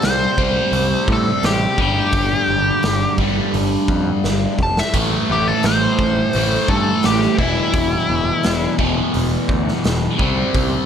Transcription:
0.00 0.26 C2 medium
0.00 0.36 C3 medium
0.00 0.40 G3 medium
0.00 0.37 C4 medium
0.00 snare loud
0.00 open hi-hat medium
0.04 1.06 C5 medium
0.38 0.60 C2 medium
0.38 1.78 G3 medium
0.38 1.77 C4 medium
0.38 kick medium
0.42 1.78 C3 medium
0.72 0.94 C2 medium
0.72 open hi-hat soft
1.08 1.30 A2 medium
1.08 kick medium
1.13 1.45 A4 medium
1.43 1.65 A1 medium
1.43 1.79 G4 medium
1.43 snare loud
1.43 open hi-hat soft
1.78 2.00 G1 medium
1.78 3.17 G2 medium
1.78 3.17 D3 medium
1.78 3.18 G3 medium
1.78 3.17 G4 medium
1.78 kick medium
2.12 2.35 G1 medium
2.12 kick loud
2.12 open hi-hat soft
2.49 2.70 G1 medium
2.83 3.06 G1 medium
2.83 snare loud
2.83 open hi-hat soft
3.18 3.40 G1 medium
3.18 4.58 D3 medium
3.18 4.57 G3 medium
3.18 kick medium
3.23 4.59 G2 medium
3.54 3.75 G1 medium
3.54 open hi-hat soft
3.88 4.10 F2 medium
3.88 kick medium
4.24 4.46 G1 medium
4.24 snare medium
4.59 4.80 F1 medium
4.59 kick medium
4.63 4.78 A5 medium
4.77 4.95 E5 medium
4.77 snare medium
4.94 5.16 A1 medium
4.94 6.32 A2 medium
4.94 6.36 E3 medium
4.94 6.34 A3 medium
4.94 kick medium
4.94 open hi-hat soft
4.94 crash medium
5.30 5.51 A1 medium
5.30 5.48 G4 medium
5.48 5.64 A4 medium
5.63 5.86 A1 medium
5.63 6.67 C5 medium
5.63 snare loud
5.63 open hi-hat soft
5.99 6.21 A1 medium
5.99 kick medium
6.33 6.56 A1 loud
6.33 7.37 A2 medium
6.33 7.42 E3 medium
6.33 open hi-hat medium
6.38 7.39 A3 medium
6.68 6.90 G2 medium
6.68 7.04 A4 medium
6.68 kick medium
7.03 7.27 A1 medium
7.03 7.39 G4 medium
7.03 snare loud
7.03 open hi-hat soft
7.22 snare soft
7.38 7.60 E1 medium
7.38 8.77 E2 medium
7.38 8.78 B2 medium
7.38 8.75 E4 medium
7.38 kick medium
7.42 8.78 E3 medium
7.73 7.96 E1 medium
7.73 kick loud
7.73 open hi-hat soft
8.10 8.31 E1 medium
8.43 8.67 E1 medium
8.43 snare loud
8.43 open hi-hat soft
8.78 9.01 E1 medium
8.78 10.19 E2 medium
8.78 10.18 B2 medium
8.78 10.17 E3 medium
8.78 kick medium
9.14 9.36 E1 medium
9.14 open hi-hat soft
9.49 9.71 D2 medium
9.49 kick medium
9.68 snare soft
9.84 10.07 E1 medium
9.84 snare loud
9.84 open hi-hat soft
10.18 10.41 C2 medium
10.18 10.86 C3 medium
10.18 10.86 G3 medium
10.18 10.86 C4 medium
10.18 kick medium
10.55 10.76 C2 medium
10.55 kick loud
10.55 open hi-hat soft

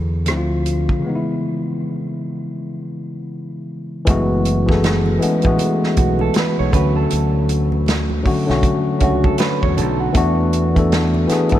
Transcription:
0.00 0.30 E2 medium
0.00 0.22 D3 medium
0.00 0.23 F#3 medium
0.00 0.25 B3 medium
0.00 0.27 E4 medium
0.00 0.27 A4 medium
0.26 1.03 D3 medium
0.26 1.03 F3 medium
0.26 1.04 A3 medium
0.26 1.04 C4 medium
0.26 cross-stick medium
0.26 closed hi-hat medium
0.30 0.90 D2 medium
0.30 0.37 E4 medium
0.37 1.08 F4 medium
0.66 closed hi-hat medium
0.89 kick medium
0.99 4.01 C#3 medium
0.99 4.03 E3 medium
1.04 4.04 G#3 medium
1.04 4.05 B3 medium
1.09 1.14 D#4 medium
1.16 4.09 E4 medium
4.05 5.18 F#1 loud
4.05 4.55 E3 loud
4.05 4.56 G#3 medium
4.05 4.56 A3 medium
4.05 4.57 B3 loud
4.05 kick loud
4.05 closed hi-hat medium
4.05 muted conga soft
4.10 4.57 F#4 loud
4.45 closed hi-hat medium
4.67 5.12 E3 medium
4.67 5.13 A3 medium
4.67 5.14 B3 medium
4.67 5.13 G#4 medium
4.67 kick medium
4.67 high conga medium
4.71 5.15 A4 medium
4.71 snare soft
4.84 snare loud
4.84 closed hi-hat medium
5.06 high conga medium
5.19 5.39 E3 medium
5.19 5.40 G#3 medium
5.19 5.41 A3 medium
5.19 5.41 B3 medium
5.19 closed hi-hat medium
5.24 5.42 C#4 medium
5.42 5.57 A1 medium
5.42 6.66 E3 medium
5.42 6.66 G#3 medium
5.42 6.67 A3 medium
5.42 kick medium
5.42 closed hi-hat soft
5.46 6.68 B3 medium
5.46 6.68 F#4 medium
5.59 closed hi-hat medium
5.59 muted conga soft
5.59 low conga medium
5.84 snare soft
5.97 6.28 B1 medium
5.97 6.20 F#4 medium
5.97 kick medium
5.97 closed hi-hat medium
5.97 muted conga soft
5.97 high conga medium
6.19 6.35 A4 medium
6.19 high conga medium
6.34 6.57 B4 medium
6.34 snare loud
6.34 closed hi-hat medium
6.34 muted conga soft
6.58 6.71 B1 medium
6.58 6.73 C#5 medium
6.58 high conga soft
6.71 7.04 D2 medium
6.71 7.99 D3 medium
6.71 8.00 F#3 medium
6.71 8.00 A3 medium
6.71 8.01 C#4 medium
6.71 6.95 B4 medium
6.71 kick medium
6.71 closed hi-hat medium
6.71 low conga medium
6.76 8.01 F#4 medium
6.96 8.06 A4 medium
7.11 8.22 D2 medium
7.11 closed hi-hat medium
7.49 closed hi-hat medium
7.72 high conga medium
7.86 snare loud
7.86 closed hi-hat medium
7.86 muted conga soft
8.10 high conga medium
8.23 8.43 D3 medium
8.23 8.44 F#3 medium
8.23 8.44 A3 medium
8.23 8.45 C#4 medium
8.23 kick medium
8.23 open hi-hat soft
8.27 8.45 F#4 medium
8.46 8.61 B1 medium
8.46 8.92 D3 medium
8.46 8.93 F#3 medium
8.46 8.93 A3 medium
8.46 8.94 C#4 medium
8.46 snare soft
8.51 8.95 F#4 medium
8.63 kick medium
8.63 closed hi-hat medium
8.63 muted conga soft
8.63 low conga medium
8.99 9.32 C#2 medium
8.99 9.98 F#3 medium
8.99 9.99 A3 medium
8.99 9.99 C#4 medium
8.99 9.97 D4 medium
8.99 9.23 F#4 medium
8.99 kick medium
8.99 closed hi-hat medium
8.99 high conga medium
9.04 10.00 F#4 medium
9.24 9.39 A4 medium
9.24 kick medium
9.24 high conga medium
9.38 9.61 B4 medium
9.38 snare loud
9.38 closed hi-hat medium
9.38 muted conga soft
9.63 9.79 E2 medium
9.63 9.76 C#5 medium
9.63 kick medium
9.63 high conga soft
9.77 10.08 B1 medium
9.77 9.99 A4 medium
9.77 closed hi-hat medium
9.77 low conga medium
10.00 10.36 F#4 medium
10.13 11.25 E2 loud
10.13 10.62 E3 loud
10.13 10.63 A3 loud
10.13 10.64 B3 loud
10.13 10.64 D4 medium
10.13 kick loud
10.13 closed hi-hat medium
10.18 10.65 F#4 loud
10.53 closed hi-hat medium
10.74 11.20 E3 medium
10.74 11.21 A3 medium
10.74 11.21 B3 medium
10.74 11.22 D4 medium
10.74 kick medium
10.74 closed hi-hat soft
10.74 high conga medium
10.79 11.22 A4 medium
10.92 snare loud
10.92 closed hi-hat medium
11.14 high conga medium
11.27 11.47 E3 medium
11.27 11.48 A3 medium
11.27 11.48 B3 medium
11.27 11.49 D4 medium
11.27 muted fingered electric bass stroke soft
11.27 snare soft
11.27 closed hi-hat medium
11.32 11.50 G#4 medium
11.49 11.60 G#2 medium
11.49 11.60 E3 medium
11.49 11.60 A3 medium
11.49 11.60 B3 medium
11.49 kick medium
11.49 closed hi-hat soft
11.54 11.60 D4 medium
11.54 11.60 A4 medium

